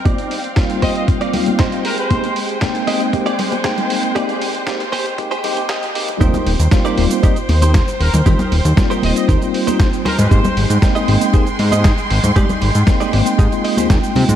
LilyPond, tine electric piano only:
\new Staff \with { instrumentName = "Tine electric piano" } { \time 4/4 \key ees \major \tempo 4 = 117 <g bes c' ees' f'>16 r8. <g bes c' ees' f'>4~ <g bes c' ees' f'>16 <g bes c' ees' f'>4~ <g bes c' ees' f'>16 r8 | <aes bes c' ees' g'>16 r8. <aes bes c' ees' g''>4 <aes bes c' ees' g'>16 r8. <aes bes c' ees' g''>4 | <aes bes c' ees' g'>16 r8. <aes bes c' ees' g'>16 r8. <aes bes c' ees' g'>16 r16 <aes bes c' ees' g'>16 r16 <aes bes c' ees' g'>16 r16 <aes bes c' ees' g'>16 r16 | <g bes c' ees' f'>16 r8. <g bes c' ees' f'>4 <g bes c' ees' g'>16 r4. r16 |
<g bes c' ees' f'>16 r8. <g bes c' ees' f'>4~ <g bes c' ees' f'>16 <g bes c' ees' f'>4~ <g bes c' ees' f'>16 r8 | <aes bes c' ees' g'>16 r8. <aes bes c' ees' g''>4 <aes bes c' ees' aes'>16 r4. r16 | <aes bes c' ees' g'>16 r8. <aes bes c' ees' g''>4~ <aes bes c' ees' g''>16 <aes bes c' ees' f'>4.~ <aes bes c' ees' f'>16 | }